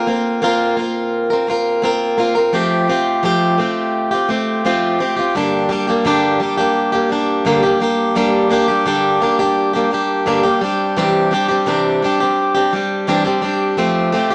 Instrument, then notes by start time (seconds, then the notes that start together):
steel-string acoustic guitar
0.07 A#3 C4 F4 A#4
0.42 A#3 C4 F4 A#4
0.77 A#3 C4 F4 A#4
1.30 C4 F4 A#4
1.47 A#3 C4 F4 A#4
1.82 A#3 C4 F4 A#4
2.18 A#3 C4 F4 A#4
2.35 C4 F4 A#4
2.53 F3 A3 C4 F4 G4
2.88 A3 C4 F4 G4
3.23 F3 A3 C4 F4 G4
3.58 A3 C4 F4 G4
4.11 C4 F4 G4
4.29 A3 C4 F4 G4
4.65 F3 A3 C4 F4 G4
4.99 A3 C4 F4 G4
5.16 C4 F4 G4
5.35 G2 D3 G3 A#3 D4 G4
5.69 G3 A#3 D4 G4
5.87 G3 A#3 D4 G4
6.05 G2 D3 G3 A#3 D4 G4
6.40 G3 A#3 D4 G4
6.57 G3 A#3 D4 G4
6.92 G3 A#3 D4 G4
7.09 G3 A#3 D4 G4
7.45 G2 D3 G3 A#3 D4 G4
7.63 G3 A#3 D4 G4
7.80 G3 A#3 D4 G4
8.15 G2 D3 G3 A#3 D4 G4
8.50 G3 A#3 D4 G4
8.68 G3 A#3 D4 G4
8.86 G2 D3 G3 A#3 D4 G4
9.21 G3 A#3 D4 G4
9.39 G3 A#3 D4 G4
9.73 G3 A#3 D4 G4
9.91 G3 A#3 D4 G4
10.26 G2 D3 G3 A#3 D4 G4
10.43 G3 A#3 D4 G4
10.61 G3 C4 D4 G4
10.96 C3 E3 G3 C4 D4 G4
11.31 G3 C4 D4 G4
11.48 G3 C4 D4 G4
11.66 C3 E3 G3 C4 D4 G4
12.02 G3 C4 D4 G4
12.20 G3 C4 D4 G4
12.55 G3 C4 D4 G4
12.73 G3 C4 D4 G4
13.07 C3 E3 G3 C4 D4 G4
13.24 G3 C4 D4 G4
13.42 G3 C4 D4 G4
13.77 F3 A3 C4 F4 G4
14.12 A3 C4 F4 G4
14.30 F4 G4